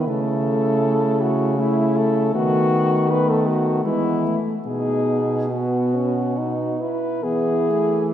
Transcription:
0.07 2.31 C#3 soft
0.07 1.58 A3 soft
0.07 1.57 E4 soft
0.07 1.22 A4 medium
1.21 1.61 F#4 medium
1.58 2.33 A3 soft
1.58 2.36 E4 medium
1.58 1.98 E4 medium
1.97 2.34 A4 medium
2.34 3.83 D#3 soft
2.34 3.08 A3 soft
2.34 3.08 B3 soft
2.34 3.11 F#4 medium
3.09 3.86 A3 medium
3.09 3.84 B3 medium
3.09 3.31 B4 medium
3.29 3.48 A4 medium
3.47 3.84 F#4 medium
3.85 4.37 E3 soft
3.85 4.28 G#3 soft
3.85 4.37 B3 soft
3.85 4.37 E4 medium
4.26 4.55 A3 soft
4.66 6.85 B2 soft
4.66 5.21 B3 soft
4.66 5.47 D#4 soft
4.66 5.53 G#4 medium
5.50 5.96 B3 soft
5.50 6.85 B3 soft
5.50 6.79 F#4 soft
5.94 6.39 C#4 soft
6.38 6.82 D#4 soft
6.80 7.24 E4 soft
6.80 7.25 B4 medium
7.23 8.14 E3 soft
7.23 7.71 B3 soft
7.23 8.14 E4 soft
7.23 8.14 G#4 medium
7.70 8.14 A3 soft

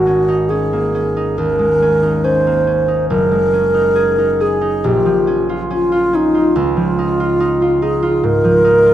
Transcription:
0.00 3.13 G#1 medium
0.00 1.58 G#3 soft
0.00 0.51 F#4 medium
0.07 0.49 C#4 soft
0.28 1.15 D#4 soft
0.49 0.93 C#4 soft
0.49 1.39 G#4 medium
0.73 2.45 A#3 soft
0.95 1.81 C#4 soft
1.17 2.01 D#4 soft
1.38 3.13 D#2 soft
1.38 2.26 A#4 medium
1.59 3.30 G#3 soft
1.82 2.23 C#4 soft
2.03 2.87 D#4 soft
2.24 2.66 C#4 soft
2.24 3.09 C5 medium
2.47 6.37 A#3 soft
2.67 3.52 C#4 soft
2.88 3.73 D#4 soft
3.10 4.88 F#1 medium
3.10 4.43 A#4 medium
3.31 4.88 G#3 soft
3.53 5.26 C#4 soft
3.74 4.17 D#4 soft
3.95 4.39 G#4 medium
4.18 4.60 D#4 soft
4.40 4.88 G#4 soft
4.40 4.87 G#4 medium
4.61 4.88 D#4 soft
4.84 6.60 A#1 medium
4.84 5.44 G4 medium
5.06 6.75 F3 soft
5.27 5.69 C#4 soft
5.49 5.91 F4 soft
5.70 6.12 C#4 medium
5.70 6.17 F4 medium
5.92 6.33 F4 soft
6.13 8.94 C#4 soft
6.13 6.58 D#4 medium
6.35 7.19 F4 soft
6.56 8.94 C#2 medium
6.56 7.84 F4 medium
6.77 8.43 F3 soft
6.99 7.39 D#4 soft
7.20 7.61 F4 soft
7.40 7.81 D#4 soft
7.62 8.01 F4 soft
7.82 8.63 D#4 medium
7.82 8.26 G#4 medium
8.03 8.85 F4 medium
8.23 8.94 G#2 soft
8.23 8.94 A#4 medium
8.44 8.94 F3 soft
8.64 8.94 D#4 soft
8.86 8.94 F4 soft

